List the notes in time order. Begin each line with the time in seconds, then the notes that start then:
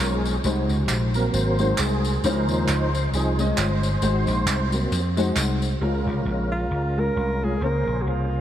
Already playing: G#3 C#4 F4 A#4
0.00 B1 A#4
0.15 G#4
0.25 tambourine
0.44 C2 C3 G#3 D#4 F#4 C5, tambourine
0.69 C#2, tambourine
0.89 A#1, clap, tambourine
1.14 F#3 A#3 C4 A#4, tambourine
1.33 G#1 C5, tambourine
1.59 G#3 D#4 F#4 C5, tambourine
1.78 C2 G#4, clap, tambourine
2.04 tambourine
2.24 C#2 C#3 F3 G#3 C#4 D#4 E4 A#4 C5, tambourine
2.30 F4
2.49 D#2, tambourine
2.68 C#2 C5, clap, tambourine
2.95 tambourine
3.13 C2 F3 C4 D#4 G#4, tambourine
3.39 G#3 C#4 F4 D#5, tambourine
3.58 G1 C5, clap, tambourine
3.83 tambourine
4.02 G#1 G#2 G#3 D#4 F#4 C5, tambourine
4.27 A#1, tambourine
4.46 C2, clap, tambourine
4.72 F#3 A#3 C4, tambourine
4.92 F2, tambourine
5.17 G#3 D#4 F#4 C5, tambourine
5.36 C2, clap, tambourine
5.62 tambourine
5.81 C#2 C#3 G#3 C#4 F4 A#4
6.06 C2
6.25 A#1
6.52 F4
6.71 C#2
6.97 G#3 C#4 F4 A#4
7.16 C2
7.42 G#3 C#4 F4 G#4 A#4
7.61 C#2 C#3 A#3 C4 C#4 G#4 A#4 C5
7.67 C#4
7.87 A#1
8.02 F#4
8.07 C2 F4